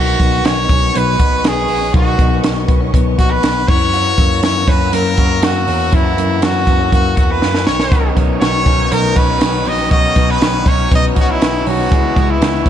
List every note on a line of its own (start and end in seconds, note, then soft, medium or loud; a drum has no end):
0.00 0.15 B1 loud
0.00 1.92 D#3 medium
0.00 0.23 C#4 medium
0.00 0.45 F#4 medium
0.00 0.48 F#4 loud
0.00 3.65 B4 medium
0.00 3.65 D#5 medium
0.00 3.65 C#6 medium
0.20 0.40 B1 loud
0.20 0.93 B3 medium
0.20 kick medium
0.20 closed hi-hat medium
0.45 0.65 B1 loud
0.45 1.19 F#4 medium
0.45 0.98 C#5 loud
0.45 snare loud
0.45 closed hi-hat medium
0.69 0.90 B1 medium
0.69 1.68 C#4 medium
0.69 kick loud
0.69 closed hi-hat medium
0.94 1.15 B1 loud
0.94 1.43 B3 medium
0.94 1.49 B4 loud
0.94 closed hi-hat medium
1.19 1.40 A#1 medium
1.19 1.93 F#4 medium
1.19 kick medium
1.19 closed hi-hat medium
1.44 1.65 B1 loud
1.44 1.67 B3 medium
1.44 1.95 G#4 loud
1.44 snare loud
1.44 closed hi-hat loud
1.68 1.81 B3 medium
1.68 open hi-hat medium
1.81 2.67 C#4 medium
1.93 2.15 B1 loud
1.93 3.68 D#3 medium
1.93 2.43 F#4 medium
1.93 2.41 F#4 loud
1.93 kick loud
1.93 closed hi-hat medium
2.18 2.39 B1 loud
2.18 2.67 B3 medium
2.18 kick loud
2.18 closed hi-hat medium
2.43 2.65 B1 medium
2.43 3.18 F#4 medium
2.43 snare loud
2.43 closed hi-hat loud
2.68 2.89 B1 medium
2.68 2.80 B3 medium
2.68 kick loud
2.68 closed hi-hat medium
2.80 3.73 C#4 medium
2.93 3.14 B1 loud
2.93 3.42 B3 medium
2.93 kick loud
2.93 closed hi-hat loud
3.18 3.39 A#1 loud
3.18 3.93 F#4 medium
3.18 3.32 F#4 loud
3.18 kick medium
3.18 closed hi-hat medium
3.31 3.70 B4 loud
3.43 3.64 B1 loud
3.43 3.73 B3 medium
3.43 snare loud
3.43 closed hi-hat loud
3.68 4.10 F#2 loud
3.68 3.92 E3 medium
3.68 4.43 C#5 loud
3.68 7.63 F#5 medium
3.68 7.63 A#5 medium
3.68 7.63 E6 medium
3.68 kick loud
3.68 crash medium
3.93 5.91 E3 medium
3.93 4.42 F#4 medium
3.93 closed hi-hat medium
4.18 4.39 F#2 loud
4.18 4.91 A#3 medium
4.18 kick loud
4.18 closed hi-hat medium
4.42 4.63 F#2 medium
4.42 4.56 E4 medium
4.42 4.70 C#5 loud
4.42 snare loud
4.42 closed hi-hat medium
4.56 5.17 F#4 medium
4.67 4.88 F#2 loud
4.67 5.67 C#4 medium
4.67 4.95 B4 loud
4.67 kick loud
4.67 closed hi-hat medium
4.93 5.13 F#2 loud
4.93 5.41 A#3 medium
4.93 5.46 A#4 loud
4.93 closed hi-hat loud
5.17 5.38 F#2 loud
5.17 5.92 F#4 medium
5.17 kick medium
5.17 closed hi-hat medium
5.42 5.63 F#2 loud
5.42 6.16 A#3 medium
5.42 5.96 F#4 loud
5.42 snare loud
5.42 closed hi-hat loud
5.67 5.88 E2 loud
5.67 6.66 C#4 medium
5.67 open hi-hat medium
5.92 6.13 F#2 loud
5.92 7.66 E3 loud
5.92 6.45 E4 loud
5.92 6.42 F#4 medium
5.92 kick loud
5.92 closed hi-hat medium
6.17 6.38 F#2 loud
6.17 6.90 A#3 medium
6.17 closed hi-hat medium
6.42 6.63 F#2 loud
6.42 7.16 F#4 medium
6.42 6.93 F#4 medium
6.42 snare loud
6.42 closed hi-hat medium
6.67 6.88 F#2 medium
6.67 6.79 B3 medium
6.67 kick medium
6.67 closed hi-hat medium
6.79 7.72 C#4 medium
6.91 7.13 F#2 loud
6.91 7.39 A#3 medium
6.91 7.16 F#4 medium
6.91 kick medium
6.91 closed hi-hat medium
7.16 7.38 E2 medium
7.16 7.92 F#4 medium
7.16 7.32 F#4 medium
7.16 kick medium
7.16 closed hi-hat medium
7.31 7.66 B4 loud
7.41 7.63 F#2 medium
7.41 7.71 A#3 medium
7.41 snare medium
7.55 snare medium
7.66 8.08 B1 medium
7.66 7.90 D#3 medium
7.66 12.69 B4 medium
7.66 8.11 C#5 medium
7.66 11.87 D#5 medium
7.66 11.87 C#6 medium
7.66 snare loud
7.80 snare loud
7.91 8.17 B2 medium
7.91 9.91 D#3 medium
7.91 8.17 D#3 medium
7.91 8.17 F#3 medium
7.91 8.17 C#4 medium
7.91 8.16 D#4 medium
7.91 8.40 F#4 medium
7.91 kick loud
7.91 closed hi-hat medium
8.16 8.37 B1 loud
8.16 8.42 F#3 soft
8.16 8.91 B3 medium
8.16 8.42 C#4 soft
8.16 8.42 D#4 medium
8.16 kick medium
8.16 closed hi-hat medium
8.40 8.62 B1 loud
8.40 8.67 D#3 medium
8.40 8.67 F#3 medium
8.40 8.67 C#4 medium
8.40 9.14 F#4 medium
8.40 8.93 C#5 loud
8.40 snare loud
8.40 closed hi-hat medium
8.44 8.66 D#4 medium
8.66 8.87 B1 medium
8.66 9.18 F#3 soft
8.66 9.65 C#4 medium
8.66 9.17 C#4 soft
8.66 9.16 D#4 medium
8.66 kick loud
8.66 closed hi-hat medium
8.91 9.12 B1 loud
8.91 9.40 B3 medium
8.91 9.18 A#4 loud
8.91 closed hi-hat loud
9.16 9.37 B1 medium
9.16 9.41 F#3 soft
9.16 9.42 C#4 medium
9.16 9.42 D#4 medium
9.16 9.90 F#4 medium
9.16 9.70 B4 loud
9.16 kick medium
9.16 closed hi-hat medium
9.40 9.62 B1 medium
9.40 9.91 D#3 medium
9.40 9.91 F#3 medium
9.40 9.65 B3 medium
9.40 9.92 C#4 medium
9.40 9.91 D#4 medium
9.40 snare loud
9.40 closed hi-hat loud
9.65 9.87 A#1 loud
9.65 9.78 B3 medium
9.65 9.91 D#5 loud
9.65 open hi-hat medium
9.78 10.64 C#4 medium
9.91 10.12 B1 loud
9.91 10.16 B2 medium
9.91 10.17 D#3 medium
9.91 10.17 F#3 medium
9.91 10.16 C#4 medium
9.91 10.15 D#4 loud
9.91 10.40 F#4 medium
9.91 10.32 D#5 loud
9.91 kick loud
9.91 closed hi-hat medium
10.15 10.37 B1 loud
10.15 10.40 F#3 soft
10.15 10.91 B3 medium
10.15 10.41 C#4 soft
10.15 10.41 D#4 medium
10.15 kick medium
10.15 closed hi-hat medium
10.31 10.70 B4 loud
10.41 10.62 B1 loud
10.41 10.66 D#3 medium
10.41 10.66 F#3 medium
10.41 10.66 C#4 medium
10.41 10.65 D#4 medium
10.41 11.14 F#4 medium
10.41 snare loud
10.41 closed hi-hat medium
10.65 10.86 B1 loud
10.65 11.17 F#3 soft
10.65 11.66 C#4 medium
10.65 11.17 C#4 medium
10.65 11.15 D#4 medium
10.65 10.92 C#5 loud
10.65 kick loud
10.65 closed hi-hat medium
10.91 11.12 B1 loud
10.91 11.41 B3 medium
10.91 11.05 D#5 loud
10.91 kick loud
10.91 closed hi-hat loud
11.15 11.37 A#1 medium
11.15 11.41 F#3 soft
11.15 11.41 C#4 soft
11.15 11.41 D#4 medium
11.15 11.90 F#4 medium
11.15 kick medium
11.15 closed hi-hat medium
11.20 11.32 F#4 medium
11.31 11.67 E4 loud
11.41 11.61 B1 loud
11.41 11.91 D#3 medium
11.41 11.91 F#3 medium
11.41 12.15 B3 medium
11.41 11.92 C#4 medium
11.41 11.92 D#4 medium
11.41 snare loud
11.41 closed hi-hat loud
11.66 11.86 B1 medium
11.66 11.96 C#4 medium
11.66 12.32 F#4 medium
11.66 open hi-hat medium
11.90 12.12 C#2 loud
11.90 12.16 C#3 medium
11.90 12.69 E3 medium
11.90 12.16 G#3 medium
11.90 12.16 B3 medium
11.90 12.15 E4 loud
11.90 12.40 G#4 medium
11.90 12.69 E5 medium
11.90 12.69 C#6 medium
11.90 kick loud
11.90 closed hi-hat medium
12.16 12.37 C#2 loud
12.16 12.42 G#3 soft
12.16 12.69 B3 medium
12.16 12.41 B3 medium
12.16 12.41 E4 medium
12.16 kick loud
12.16 closed hi-hat medium
12.30 12.69 E4 medium
12.41 12.61 C#2 loud
12.41 12.66 C#3 medium
12.41 12.67 G#3 medium
12.41 12.66 B3 medium
12.41 12.65 E4 medium
12.41 12.69 G#4 medium
12.41 snare loud
12.41 closed hi-hat loud
12.66 12.69 C#2 medium
12.66 12.69 C#4 medium
12.66 12.69 E4 medium
12.66 kick loud
12.66 closed hi-hat medium